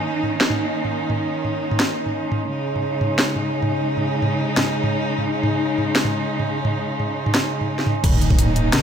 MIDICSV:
0, 0, Header, 1, 7, 480
1, 0, Start_track
1, 0, Tempo, 346821
1, 1525, Time_signature, 4, 2, 24, 8
1, 12207, End_track
2, 0, Start_track
2, 0, Title_t, "Synth drone"
2, 0, Program_c, 0, 95
2, 0, Note_on_c, 0, 61, 81
2, 11120, Note_on_c, 0, 63, 89
2, 11135, Note_off_c, 0, 61, 0
2, 12207, Note_off_c, 0, 63, 0
2, 12207, End_track
3, 0, Start_track
3, 0, Title_t, "Cello section"
3, 0, Program_c, 1, 48
3, 0, Note_on_c, 1, 51, 70
3, 0, Note_on_c, 1, 58, 66
3, 0, Note_on_c, 1, 63, 76
3, 3389, Note_off_c, 1, 58, 0
3, 3390, Note_off_c, 1, 51, 0
3, 3390, Note_off_c, 1, 63, 0
3, 3443, Note_on_c, 1, 49, 72
3, 3444, Note_on_c, 1, 63, 78
3, 3445, Note_on_c, 1, 56, 66
3, 11069, Note_off_c, 1, 49, 0
3, 11070, Note_off_c, 1, 56, 0
3, 11070, Note_off_c, 1, 63, 0
3, 11129, Note_on_c, 1, 51, 79
3, 11129, Note_on_c, 1, 63, 87
3, 11130, Note_on_c, 1, 58, 76
3, 12207, Note_off_c, 1, 51, 0
3, 12207, Note_off_c, 1, 58, 0
3, 12207, Note_off_c, 1, 63, 0
3, 12207, End_track
4, 0, Start_track
4, 0, Title_t, "Kalimba"
4, 0, Program_c, 2, 108
4, 11125, Note_on_c, 2, 51, 78
4, 12063, Note_off_c, 2, 51, 0
4, 12084, Note_on_c, 2, 49, 80
4, 12207, Note_off_c, 2, 49, 0
4, 12207, End_track
5, 0, Start_track
5, 0, Title_t, "808-style bass"
5, 0, Program_c, 3, 38
5, 11125, Note_on_c, 3, 27, 100
5, 12067, Note_off_c, 3, 27, 0
5, 12207, End_track
6, 0, Start_track
6, 0, Title_t, "Impact"
6, 0, Program_c, 4, 103
6, 11125, Note_on_c, 4, 60, 73
6, 12207, Note_off_c, 4, 60, 0
6, 12207, End_track
7, 0, Start_track
7, 0, Title_t, "Drums"
7, 323, Note_on_c, 9, 45, 44
7, 462, Note_off_c, 9, 45, 0
7, 561, Note_on_c, 9, 38, 114
7, 692, Note_on_c, 9, 45, 67
7, 700, Note_off_c, 9, 38, 0
7, 831, Note_off_c, 9, 45, 0
7, 1172, Note_on_c, 9, 45, 48
7, 1311, Note_off_c, 9, 45, 0
7, 1520, Note_on_c, 9, 45, 64
7, 1658, Note_off_c, 9, 45, 0
7, 2002, Note_on_c, 9, 45, 46
7, 2141, Note_off_c, 9, 45, 0
7, 2373, Note_on_c, 9, 45, 68
7, 2485, Note_on_c, 9, 38, 111
7, 2511, Note_off_c, 9, 45, 0
7, 2624, Note_off_c, 9, 38, 0
7, 2854, Note_on_c, 9, 45, 43
7, 2992, Note_off_c, 9, 45, 0
7, 3206, Note_on_c, 9, 45, 69
7, 3344, Note_off_c, 9, 45, 0
7, 3817, Note_on_c, 9, 45, 43
7, 3955, Note_off_c, 9, 45, 0
7, 4167, Note_on_c, 9, 45, 66
7, 4306, Note_off_c, 9, 45, 0
7, 4409, Note_on_c, 9, 38, 107
7, 4547, Note_off_c, 9, 38, 0
7, 4649, Note_on_c, 9, 45, 46
7, 4787, Note_off_c, 9, 45, 0
7, 5017, Note_on_c, 9, 45, 70
7, 5155, Note_off_c, 9, 45, 0
7, 5497, Note_on_c, 9, 45, 47
7, 5635, Note_off_c, 9, 45, 0
7, 5846, Note_on_c, 9, 45, 73
7, 5984, Note_off_c, 9, 45, 0
7, 6326, Note_on_c, 9, 38, 105
7, 6326, Note_on_c, 9, 45, 47
7, 6464, Note_off_c, 9, 38, 0
7, 6464, Note_off_c, 9, 45, 0
7, 6693, Note_on_c, 9, 45, 71
7, 6832, Note_off_c, 9, 45, 0
7, 7173, Note_on_c, 9, 45, 47
7, 7312, Note_off_c, 9, 45, 0
7, 7521, Note_on_c, 9, 45, 78
7, 7660, Note_off_c, 9, 45, 0
7, 8004, Note_on_c, 9, 45, 49
7, 8143, Note_off_c, 9, 45, 0
7, 8241, Note_on_c, 9, 38, 99
7, 8370, Note_on_c, 9, 45, 73
7, 8380, Note_off_c, 9, 38, 0
7, 8508, Note_off_c, 9, 45, 0
7, 8852, Note_on_c, 9, 45, 51
7, 8990, Note_off_c, 9, 45, 0
7, 9202, Note_on_c, 9, 45, 77
7, 9340, Note_off_c, 9, 45, 0
7, 9683, Note_on_c, 9, 45, 53
7, 9822, Note_off_c, 9, 45, 0
7, 10053, Note_on_c, 9, 45, 75
7, 10165, Note_on_c, 9, 38, 105
7, 10191, Note_off_c, 9, 45, 0
7, 10303, Note_off_c, 9, 38, 0
7, 10534, Note_on_c, 9, 45, 51
7, 10672, Note_off_c, 9, 45, 0
7, 10777, Note_on_c, 9, 38, 33
7, 10886, Note_on_c, 9, 45, 75
7, 10916, Note_off_c, 9, 38, 0
7, 11024, Note_off_c, 9, 45, 0
7, 11124, Note_on_c, 9, 36, 116
7, 11125, Note_on_c, 9, 42, 79
7, 11125, Note_on_c, 9, 49, 103
7, 11255, Note_on_c, 9, 45, 55
7, 11263, Note_off_c, 9, 36, 0
7, 11263, Note_off_c, 9, 42, 0
7, 11263, Note_off_c, 9, 49, 0
7, 11367, Note_on_c, 9, 42, 39
7, 11393, Note_off_c, 9, 45, 0
7, 11494, Note_on_c, 9, 36, 61
7, 11506, Note_off_c, 9, 42, 0
7, 11605, Note_on_c, 9, 42, 69
7, 11605, Note_on_c, 9, 45, 86
7, 11632, Note_off_c, 9, 36, 0
7, 11744, Note_off_c, 9, 42, 0
7, 11744, Note_off_c, 9, 45, 0
7, 11846, Note_on_c, 9, 42, 38
7, 11846, Note_on_c, 9, 45, 56
7, 11985, Note_off_c, 9, 42, 0
7, 11985, Note_off_c, 9, 45, 0
7, 12083, Note_on_c, 9, 38, 119
7, 12083, Note_on_c, 9, 42, 85
7, 12083, Note_on_c, 9, 45, 57
7, 12207, Note_off_c, 9, 38, 0
7, 12207, Note_off_c, 9, 42, 0
7, 12207, Note_off_c, 9, 45, 0
7, 12207, End_track
0, 0, End_of_file